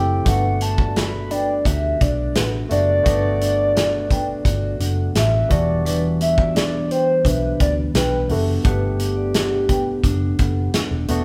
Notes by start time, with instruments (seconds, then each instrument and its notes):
Already playing: fingered electric bass F#1, clean electric guitar D3 C4 G4, tine electric piano A3 C4 E4 G4, soft synth lead G5
0.25 fingered electric bass G1, clean electric guitar G3, tine electric piano A3 B3 D4 F#4, vibraphone D4 B4, soft synth lead F#5, kick, closed hi-hat
0.61 clean electric guitar D4, soft synth lead A5, closed hi-hat
0.78 vibraphone F#4 D5, kick
0.96 clean electric guitar F#4, soft synth lead B5, snare, closed hi-hat
1.31 clean electric guitar D4, vibraphone B4 G5, soft synth lead D5, closed hi-hat
1.65 fingered electric bass D2, clean electric guitar F#4, vibraphone G4 E5, soft synth lead E5, kick, closed hi-hat
2.01 fingered electric bass B1, clean electric guitar D4, vibraphone F#4 D5, soft synth lead D5, kick, closed hi-hat
2.36 fingered electric bass A1, clean electric guitar F#4, vibraphone A4 F#5, soft synth lead B4, snare, closed hi-hat
2.69 fingered electric bass F#1, tine electric piano A3 B3 D4 F#4, clean electric guitar D4, vibraphone G4 E5, soft synth lead D5, closed hi-hat
3.03 fingered electric bass G1, clean electric guitar G3, tine electric piano A3 B3 D4 F#4, vibraphone D4 B4, kick, closed hi-hat
3.42 clean electric guitar D4, closed hi-hat
3.59 vibraphone F#4 D5
3.75 clean electric guitar F#4, snare, closed hi-hat
4.11 clean electric guitar D4, vibraphone B4 G5, kick, closed hi-hat
4.45 fingered electric bass G1, clean electric guitar F#4, kick, closed hi-hat
4.80 fingered electric bass F#1, clean electric guitar D4, vibraphone A4 F#5, closed hi-hat
5.15 fingered electric bass A1, clean electric guitar F#4, soft synth lead E5, snare, closed hi-hat
5.49 fingered electric bass E1, clean electric guitar E3, tine electric piano G3 B3 D4 F#4, soft synth lead D5, kick, closed hi-hat
5.85 clean electric guitar E3, vibraphone D4 B4, soft synth lead D5, closed hi-hat
6.21 clean electric guitar B3, soft synth lead E5, closed hi-hat
6.38 vibraphone F#4 D5, kick
6.55 clean electric guitar D4, soft synth lead D5, snare, closed hi-hat
6.91 vibraphone B4 G5, soft synth lead C5, closed hi-hat
7.25 fingered electric bass B1, clean electric guitar D4, vibraphone G4 E5, soft synth lead B4, kick, closed hi-hat
7.60 fingered electric bass D2, clean electric guitar B3, vibraphone F#4 D5, soft synth lead D5, kick, closed hi-hat
7.94 fingered electric bass B1, clean electric guitar D4, soft synth lead B4, vibraphone B4 G5, snare, closed hi-hat
8.28 fingered electric bass F#1, tine electric piano G3 B3 D4 F#4, clean electric guitar B3, vibraphone G4 E5, soft synth lead A4, open hi-hat
8.64 fingered electric bass G1, clean electric guitar G3, tine electric piano A3 B3 D4 F#5, vibraphone D4 B4, soft synth lead G4, kick, closed hi-hat
8.99 clean electric guitar B3, closed hi-hat
9.16 vibraphone D5 F#5
9.34 clean electric guitar D4, snare, closed hi-hat
9.69 clean electric guitar B3, vibraphone B4 G5, kick, closed hi-hat
10.04 fingered electric bass F#1, clean electric guitar D4, kick, closed hi-hat
10.39 fingered electric bass F#1, clean electric guitar B3, vibraphone A4 F#5, kick, closed hi-hat
10.74 clean electric guitar D4, snare, closed hi-hat
10.91 fingered electric bass E1
11.08 fingered electric bass E1, tine electric piano A3 B3 D4 F#4, clean electric guitar B3, closed hi-hat